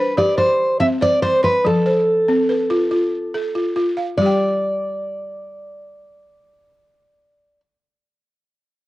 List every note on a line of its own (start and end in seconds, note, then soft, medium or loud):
0.00 0.16 D4 medium
0.00 0.17 B4 medium
0.00 0.36 C5 medium
0.17 0.38 G4 medium
0.17 0.37 D5 loud
0.38 1.00 C5 medium
0.38 0.80 C5 medium
0.80 1.22 C4 medium
0.80 0.86 E5 loud
1.01 1.21 C5 medium
1.01 1.22 D5 loud
1.22 1.43 C5 loud
1.22 1.65 C5 medium
1.43 1.65 B4 medium
1.43 1.85 C6 medium
1.65 2.07 F3 medium
1.65 3.73 A4 medium
1.86 2.49 C5 medium
2.28 2.71 C4 medium
2.49 3.13 B4 medium
2.70 2.90 F4 medium
2.91 3.54 F4 medium
3.34 3.76 A4 medium
3.55 3.75 F4 medium
3.76 4.18 F4 medium
3.97 4.39 F5 medium
4.18 7.65 G3 medium
4.18 7.60 D5 medium
4.22 7.68 G4 medium
4.26 7.73 G5 medium